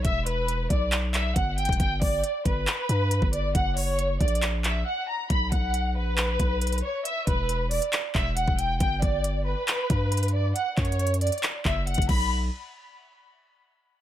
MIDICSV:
0, 0, Header, 1, 4, 480
1, 0, Start_track
1, 0, Key_signature, 2, "minor"
1, 0, Tempo, 437956
1, 50, Time_signature, 4, 2, 24, 8
1, 15357, End_track
2, 0, Start_track
2, 0, Title_t, "Violin section"
2, 0, Program_c, 0, 48
2, 50, Note_on_c, 0, 76, 88
2, 256, Note_off_c, 0, 76, 0
2, 290, Note_on_c, 0, 71, 82
2, 741, Note_off_c, 0, 71, 0
2, 771, Note_on_c, 0, 74, 78
2, 976, Note_off_c, 0, 74, 0
2, 1250, Note_on_c, 0, 76, 81
2, 1456, Note_off_c, 0, 76, 0
2, 1490, Note_on_c, 0, 78, 85
2, 1696, Note_off_c, 0, 78, 0
2, 1731, Note_on_c, 0, 79, 86
2, 1936, Note_off_c, 0, 79, 0
2, 1970, Note_on_c, 0, 79, 91
2, 2176, Note_off_c, 0, 79, 0
2, 2209, Note_on_c, 0, 74, 82
2, 2661, Note_off_c, 0, 74, 0
2, 2691, Note_on_c, 0, 71, 86
2, 3606, Note_off_c, 0, 71, 0
2, 3650, Note_on_c, 0, 74, 78
2, 3856, Note_off_c, 0, 74, 0
2, 3890, Note_on_c, 0, 78, 93
2, 4096, Note_off_c, 0, 78, 0
2, 4129, Note_on_c, 0, 73, 88
2, 4581, Note_off_c, 0, 73, 0
2, 4609, Note_on_c, 0, 74, 80
2, 4815, Note_off_c, 0, 74, 0
2, 5089, Note_on_c, 0, 76, 74
2, 5295, Note_off_c, 0, 76, 0
2, 5329, Note_on_c, 0, 78, 89
2, 5535, Note_off_c, 0, 78, 0
2, 5570, Note_on_c, 0, 82, 83
2, 5776, Note_off_c, 0, 82, 0
2, 5809, Note_on_c, 0, 83, 94
2, 6015, Note_off_c, 0, 83, 0
2, 6049, Note_on_c, 0, 78, 83
2, 6501, Note_off_c, 0, 78, 0
2, 6529, Note_on_c, 0, 71, 86
2, 7446, Note_off_c, 0, 71, 0
2, 7489, Note_on_c, 0, 73, 84
2, 7695, Note_off_c, 0, 73, 0
2, 7729, Note_on_c, 0, 76, 87
2, 7935, Note_off_c, 0, 76, 0
2, 7970, Note_on_c, 0, 71, 80
2, 8421, Note_off_c, 0, 71, 0
2, 8450, Note_on_c, 0, 74, 79
2, 8656, Note_off_c, 0, 74, 0
2, 8929, Note_on_c, 0, 76, 85
2, 9135, Note_off_c, 0, 76, 0
2, 9170, Note_on_c, 0, 78, 86
2, 9376, Note_off_c, 0, 78, 0
2, 9409, Note_on_c, 0, 79, 86
2, 9616, Note_off_c, 0, 79, 0
2, 9649, Note_on_c, 0, 79, 94
2, 9855, Note_off_c, 0, 79, 0
2, 9889, Note_on_c, 0, 74, 84
2, 10341, Note_off_c, 0, 74, 0
2, 10370, Note_on_c, 0, 71, 85
2, 11286, Note_off_c, 0, 71, 0
2, 11329, Note_on_c, 0, 74, 78
2, 11535, Note_off_c, 0, 74, 0
2, 11569, Note_on_c, 0, 78, 93
2, 11776, Note_off_c, 0, 78, 0
2, 11810, Note_on_c, 0, 73, 88
2, 12261, Note_off_c, 0, 73, 0
2, 12290, Note_on_c, 0, 74, 82
2, 12496, Note_off_c, 0, 74, 0
2, 12769, Note_on_c, 0, 76, 77
2, 12975, Note_off_c, 0, 76, 0
2, 13010, Note_on_c, 0, 78, 89
2, 13216, Note_off_c, 0, 78, 0
2, 13250, Note_on_c, 0, 83, 88
2, 13473, Note_off_c, 0, 83, 0
2, 15357, End_track
3, 0, Start_track
3, 0, Title_t, "808-style bass"
3, 0, Program_c, 1, 38
3, 51, Note_on_c, 1, 28, 111
3, 741, Note_off_c, 1, 28, 0
3, 770, Note_on_c, 1, 35, 102
3, 1461, Note_off_c, 1, 35, 0
3, 1489, Note_on_c, 1, 31, 109
3, 1835, Note_off_c, 1, 31, 0
3, 1851, Note_on_c, 1, 28, 106
3, 1966, Note_off_c, 1, 28, 0
3, 1970, Note_on_c, 1, 31, 117
3, 2201, Note_off_c, 1, 31, 0
3, 2210, Note_on_c, 1, 31, 104
3, 2440, Note_off_c, 1, 31, 0
3, 2690, Note_on_c, 1, 31, 103
3, 2920, Note_off_c, 1, 31, 0
3, 3170, Note_on_c, 1, 43, 103
3, 3515, Note_off_c, 1, 43, 0
3, 3529, Note_on_c, 1, 31, 107
3, 3875, Note_off_c, 1, 31, 0
3, 3890, Note_on_c, 1, 30, 115
3, 4581, Note_off_c, 1, 30, 0
3, 4609, Note_on_c, 1, 34, 106
3, 5301, Note_off_c, 1, 34, 0
3, 5810, Note_on_c, 1, 35, 112
3, 6040, Note_off_c, 1, 35, 0
3, 6049, Note_on_c, 1, 35, 105
3, 6530, Note_on_c, 1, 34, 99
3, 6546, Note_off_c, 1, 35, 0
3, 6986, Note_off_c, 1, 34, 0
3, 7010, Note_on_c, 1, 35, 105
3, 7471, Note_off_c, 1, 35, 0
3, 7969, Note_on_c, 1, 28, 107
3, 8546, Note_off_c, 1, 28, 0
3, 8930, Note_on_c, 1, 28, 105
3, 9276, Note_off_c, 1, 28, 0
3, 9289, Note_on_c, 1, 28, 104
3, 9635, Note_off_c, 1, 28, 0
3, 9650, Note_on_c, 1, 31, 116
3, 9880, Note_off_c, 1, 31, 0
3, 9889, Note_on_c, 1, 31, 107
3, 10465, Note_off_c, 1, 31, 0
3, 10850, Note_on_c, 1, 43, 107
3, 11541, Note_off_c, 1, 43, 0
3, 11809, Note_on_c, 1, 42, 108
3, 12385, Note_off_c, 1, 42, 0
3, 12770, Note_on_c, 1, 30, 103
3, 13115, Note_off_c, 1, 30, 0
3, 13130, Note_on_c, 1, 30, 103
3, 13245, Note_off_c, 1, 30, 0
3, 13250, Note_on_c, 1, 35, 108
3, 13696, Note_off_c, 1, 35, 0
3, 15357, End_track
4, 0, Start_track
4, 0, Title_t, "Drums"
4, 50, Note_on_c, 9, 36, 113
4, 50, Note_on_c, 9, 42, 87
4, 160, Note_off_c, 9, 36, 0
4, 160, Note_off_c, 9, 42, 0
4, 290, Note_on_c, 9, 42, 80
4, 400, Note_off_c, 9, 42, 0
4, 531, Note_on_c, 9, 42, 77
4, 640, Note_off_c, 9, 42, 0
4, 770, Note_on_c, 9, 36, 89
4, 770, Note_on_c, 9, 42, 68
4, 880, Note_off_c, 9, 36, 0
4, 880, Note_off_c, 9, 42, 0
4, 1010, Note_on_c, 9, 39, 123
4, 1010, Note_on_c, 9, 42, 80
4, 1119, Note_off_c, 9, 39, 0
4, 1120, Note_off_c, 9, 42, 0
4, 1250, Note_on_c, 9, 39, 97
4, 1250, Note_on_c, 9, 42, 82
4, 1360, Note_off_c, 9, 39, 0
4, 1360, Note_off_c, 9, 42, 0
4, 1489, Note_on_c, 9, 36, 104
4, 1490, Note_on_c, 9, 42, 82
4, 1599, Note_off_c, 9, 36, 0
4, 1600, Note_off_c, 9, 42, 0
4, 1730, Note_on_c, 9, 42, 49
4, 1810, Note_off_c, 9, 42, 0
4, 1810, Note_on_c, 9, 42, 62
4, 1851, Note_on_c, 9, 36, 99
4, 1890, Note_off_c, 9, 42, 0
4, 1890, Note_on_c, 9, 42, 74
4, 1960, Note_off_c, 9, 36, 0
4, 1970, Note_on_c, 9, 36, 113
4, 1971, Note_off_c, 9, 42, 0
4, 1971, Note_on_c, 9, 42, 85
4, 2080, Note_off_c, 9, 36, 0
4, 2080, Note_off_c, 9, 42, 0
4, 2210, Note_on_c, 9, 36, 105
4, 2210, Note_on_c, 9, 46, 77
4, 2320, Note_off_c, 9, 36, 0
4, 2320, Note_off_c, 9, 46, 0
4, 2450, Note_on_c, 9, 42, 76
4, 2560, Note_off_c, 9, 42, 0
4, 2690, Note_on_c, 9, 36, 91
4, 2690, Note_on_c, 9, 42, 67
4, 2800, Note_off_c, 9, 36, 0
4, 2800, Note_off_c, 9, 42, 0
4, 2930, Note_on_c, 9, 39, 123
4, 2930, Note_on_c, 9, 42, 82
4, 3040, Note_off_c, 9, 39, 0
4, 3040, Note_off_c, 9, 42, 0
4, 3170, Note_on_c, 9, 42, 82
4, 3280, Note_off_c, 9, 42, 0
4, 3410, Note_on_c, 9, 42, 82
4, 3520, Note_off_c, 9, 42, 0
4, 3529, Note_on_c, 9, 36, 103
4, 3639, Note_off_c, 9, 36, 0
4, 3649, Note_on_c, 9, 42, 78
4, 3759, Note_off_c, 9, 42, 0
4, 3889, Note_on_c, 9, 42, 84
4, 3890, Note_on_c, 9, 36, 116
4, 3999, Note_off_c, 9, 36, 0
4, 3999, Note_off_c, 9, 42, 0
4, 4129, Note_on_c, 9, 46, 74
4, 4239, Note_off_c, 9, 46, 0
4, 4369, Note_on_c, 9, 42, 76
4, 4479, Note_off_c, 9, 42, 0
4, 4609, Note_on_c, 9, 36, 91
4, 4609, Note_on_c, 9, 42, 56
4, 4689, Note_off_c, 9, 42, 0
4, 4689, Note_on_c, 9, 42, 56
4, 4719, Note_off_c, 9, 36, 0
4, 4769, Note_off_c, 9, 42, 0
4, 4769, Note_on_c, 9, 42, 58
4, 4849, Note_on_c, 9, 39, 125
4, 4850, Note_off_c, 9, 42, 0
4, 4850, Note_on_c, 9, 42, 81
4, 4959, Note_off_c, 9, 39, 0
4, 4959, Note_off_c, 9, 42, 0
4, 5089, Note_on_c, 9, 39, 95
4, 5089, Note_on_c, 9, 42, 83
4, 5199, Note_off_c, 9, 39, 0
4, 5199, Note_off_c, 9, 42, 0
4, 5810, Note_on_c, 9, 36, 113
4, 5810, Note_on_c, 9, 42, 83
4, 5919, Note_off_c, 9, 36, 0
4, 5919, Note_off_c, 9, 42, 0
4, 6049, Note_on_c, 9, 36, 103
4, 6049, Note_on_c, 9, 42, 73
4, 6159, Note_off_c, 9, 36, 0
4, 6159, Note_off_c, 9, 42, 0
4, 6290, Note_on_c, 9, 42, 86
4, 6399, Note_off_c, 9, 42, 0
4, 6769, Note_on_c, 9, 39, 123
4, 6769, Note_on_c, 9, 42, 82
4, 6879, Note_off_c, 9, 39, 0
4, 6879, Note_off_c, 9, 42, 0
4, 7009, Note_on_c, 9, 42, 75
4, 7010, Note_on_c, 9, 36, 91
4, 7119, Note_off_c, 9, 36, 0
4, 7119, Note_off_c, 9, 42, 0
4, 7250, Note_on_c, 9, 42, 80
4, 7310, Note_off_c, 9, 42, 0
4, 7310, Note_on_c, 9, 42, 70
4, 7370, Note_off_c, 9, 42, 0
4, 7370, Note_on_c, 9, 42, 57
4, 7430, Note_off_c, 9, 42, 0
4, 7430, Note_on_c, 9, 42, 46
4, 7539, Note_off_c, 9, 42, 0
4, 7730, Note_on_c, 9, 42, 84
4, 7839, Note_off_c, 9, 42, 0
4, 7969, Note_on_c, 9, 36, 102
4, 7970, Note_on_c, 9, 42, 70
4, 8079, Note_off_c, 9, 36, 0
4, 8079, Note_off_c, 9, 42, 0
4, 8210, Note_on_c, 9, 42, 82
4, 8320, Note_off_c, 9, 42, 0
4, 8450, Note_on_c, 9, 42, 57
4, 8450, Note_on_c, 9, 46, 53
4, 8560, Note_off_c, 9, 42, 0
4, 8560, Note_off_c, 9, 46, 0
4, 8570, Note_on_c, 9, 42, 57
4, 8680, Note_off_c, 9, 42, 0
4, 8690, Note_on_c, 9, 39, 123
4, 8690, Note_on_c, 9, 42, 84
4, 8800, Note_off_c, 9, 39, 0
4, 8800, Note_off_c, 9, 42, 0
4, 8930, Note_on_c, 9, 36, 90
4, 8930, Note_on_c, 9, 39, 97
4, 9039, Note_off_c, 9, 36, 0
4, 9040, Note_off_c, 9, 39, 0
4, 9170, Note_on_c, 9, 42, 79
4, 9279, Note_off_c, 9, 42, 0
4, 9289, Note_on_c, 9, 36, 101
4, 9399, Note_off_c, 9, 36, 0
4, 9409, Note_on_c, 9, 42, 83
4, 9519, Note_off_c, 9, 42, 0
4, 9649, Note_on_c, 9, 42, 86
4, 9650, Note_on_c, 9, 36, 109
4, 9759, Note_off_c, 9, 36, 0
4, 9759, Note_off_c, 9, 42, 0
4, 9889, Note_on_c, 9, 36, 109
4, 9889, Note_on_c, 9, 42, 70
4, 9999, Note_off_c, 9, 36, 0
4, 9999, Note_off_c, 9, 42, 0
4, 10130, Note_on_c, 9, 42, 85
4, 10239, Note_off_c, 9, 42, 0
4, 10609, Note_on_c, 9, 39, 124
4, 10609, Note_on_c, 9, 42, 84
4, 10719, Note_off_c, 9, 39, 0
4, 10719, Note_off_c, 9, 42, 0
4, 10850, Note_on_c, 9, 36, 95
4, 10850, Note_on_c, 9, 42, 78
4, 10959, Note_off_c, 9, 36, 0
4, 10959, Note_off_c, 9, 42, 0
4, 11090, Note_on_c, 9, 42, 84
4, 11150, Note_off_c, 9, 42, 0
4, 11150, Note_on_c, 9, 42, 68
4, 11210, Note_off_c, 9, 42, 0
4, 11210, Note_on_c, 9, 42, 59
4, 11270, Note_off_c, 9, 42, 0
4, 11270, Note_on_c, 9, 42, 47
4, 11379, Note_off_c, 9, 42, 0
4, 11570, Note_on_c, 9, 42, 85
4, 11679, Note_off_c, 9, 42, 0
4, 11809, Note_on_c, 9, 36, 104
4, 11810, Note_on_c, 9, 39, 62
4, 11810, Note_on_c, 9, 42, 44
4, 11889, Note_off_c, 9, 42, 0
4, 11889, Note_on_c, 9, 42, 52
4, 11919, Note_off_c, 9, 36, 0
4, 11920, Note_off_c, 9, 39, 0
4, 11969, Note_off_c, 9, 42, 0
4, 11969, Note_on_c, 9, 42, 56
4, 12050, Note_off_c, 9, 42, 0
4, 12050, Note_on_c, 9, 42, 65
4, 12129, Note_off_c, 9, 42, 0
4, 12129, Note_on_c, 9, 42, 69
4, 12209, Note_off_c, 9, 42, 0
4, 12209, Note_on_c, 9, 42, 76
4, 12289, Note_off_c, 9, 42, 0
4, 12289, Note_on_c, 9, 42, 70
4, 12350, Note_off_c, 9, 42, 0
4, 12350, Note_on_c, 9, 42, 61
4, 12409, Note_off_c, 9, 42, 0
4, 12409, Note_on_c, 9, 42, 51
4, 12470, Note_off_c, 9, 42, 0
4, 12470, Note_on_c, 9, 42, 41
4, 12529, Note_off_c, 9, 42, 0
4, 12529, Note_on_c, 9, 39, 127
4, 12529, Note_on_c, 9, 42, 80
4, 12639, Note_off_c, 9, 39, 0
4, 12639, Note_off_c, 9, 42, 0
4, 12770, Note_on_c, 9, 36, 91
4, 12770, Note_on_c, 9, 39, 99
4, 12879, Note_off_c, 9, 36, 0
4, 12880, Note_off_c, 9, 39, 0
4, 13010, Note_on_c, 9, 42, 49
4, 13090, Note_off_c, 9, 42, 0
4, 13090, Note_on_c, 9, 42, 68
4, 13130, Note_on_c, 9, 36, 106
4, 13171, Note_off_c, 9, 42, 0
4, 13171, Note_on_c, 9, 42, 86
4, 13239, Note_off_c, 9, 36, 0
4, 13250, Note_on_c, 9, 36, 112
4, 13250, Note_on_c, 9, 49, 91
4, 13280, Note_off_c, 9, 42, 0
4, 13359, Note_off_c, 9, 36, 0
4, 13360, Note_off_c, 9, 49, 0
4, 15357, End_track
0, 0, End_of_file